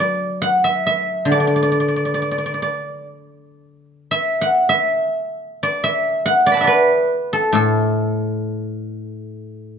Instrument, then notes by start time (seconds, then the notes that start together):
guzheng
Already playing: D3 F#3 E5 F#5
0.00 D5
0.42 F#5
0.64 E5
0.87 E5
1.25 D3
1.32 D5
1.40 D5
1.47 D5
1.56 D5
1.63 D5
1.72 D5
1.80 D5
1.88 D5
1.96 D5
2.05 D5
2.14 D5
2.22 D5
2.31 D5
2.38 D5
2.46 D5
2.54 D5
2.62 D5
4.11 E5
4.41 F#5
4.69 E5
5.63 D5
5.84 E5
6.26 F#5
6.46 D5 D6
6.52 A5 B5
6.57 E5 F#5
6.64 B4 D5
7.33 A4
7.53 A2 A4